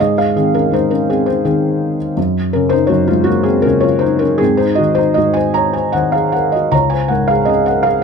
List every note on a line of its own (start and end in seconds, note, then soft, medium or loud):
0.00 0.70 G#2 medium
0.00 0.16 G#4 medium
0.00 0.16 D#5 medium
0.18 0.35 G#4 medium
0.18 0.35 F5 medium
0.36 1.43 D#3 soft
0.36 0.53 C4 medium
0.36 0.55 G#4 medium
0.54 0.71 C#4 medium
0.54 0.73 A#4 medium
0.71 2.13 G#2 soft
0.71 0.89 D#4 medium
0.71 0.91 C5 medium
0.91 1.07 C#4 medium
0.91 1.07 A#4 medium
1.10 1.26 C4 medium
1.10 1.28 G#4 medium
1.26 1.43 D#4 soft
1.26 1.45 C5 medium
1.45 2.15 D#3 soft
1.45 1.96 C4 soft
1.45 1.95 G#4 medium
2.17 2.88 F#2 medium
2.53 3.64 C#3 medium
2.53 2.72 C#4 medium
2.53 2.73 A#4 medium
2.69 2.90 D#4 medium
2.69 2.90 C5 medium
2.87 4.37 F#2 medium
2.87 3.07 F#4 medium
2.87 3.08 C#5 medium
3.08 3.27 G#3 medium
3.08 3.26 F4 medium
3.24 3.45 A#3 medium
3.24 3.45 F#4 medium
3.43 3.64 C4 medium
3.43 3.64 G#4 medium
3.62 4.39 C#3 medium
3.62 3.83 C#4 medium
3.62 3.83 A#4 medium
3.80 4.01 F4 medium
3.80 4.02 C#5 medium
3.99 4.20 D#4 medium
3.99 4.21 C5 medium
4.19 4.40 C#4 medium
4.19 4.40 A#4 medium
4.38 5.16 G#2 medium
4.38 4.58 C4 medium
4.38 4.59 G#4 medium
4.57 4.78 D#4 medium
4.57 4.78 C5 medium
4.75 4.96 F#4 medium
4.75 4.97 D#5 medium
4.79 5.93 D#3 soft
4.95 5.15 D#4 medium
4.95 5.16 C5 medium
5.14 6.68 G#2 soft
5.14 5.35 F#4 medium
5.14 5.35 D#5 medium
5.34 5.54 C5 medium
5.34 5.52 G#5 medium
5.54 5.74 C#5 medium
5.54 5.73 A#5 medium
5.73 5.94 C5 medium
5.73 5.94 G#5 medium
5.92 6.70 D#3 soft
5.92 6.14 C5 medium
5.92 6.14 F#5 medium
6.12 6.33 G#4 medium
6.12 6.33 F5 medium
6.32 6.53 A#4 medium
6.32 6.53 F#5 medium
6.52 6.72 F#4 medium
6.52 6.72 D#5 medium
6.71 8.04 C#2 medium
6.71 6.91 C#5 medium
6.71 6.91 A#5 medium
6.90 7.10 C5 medium
6.90 7.10 G#5 medium
7.08 8.04 G#2 soft
7.08 7.29 A#4 medium
7.08 7.29 F#5 medium
7.28 7.48 G#4 medium
7.28 7.48 F5 medium
7.45 8.04 C#3 soft
7.45 7.66 G#4 medium
7.45 7.64 D#5 medium
7.66 7.86 F#5 medium
7.70 7.87 A#4 medium
7.83 8.04 G#4 medium
7.83 8.04 F5 medium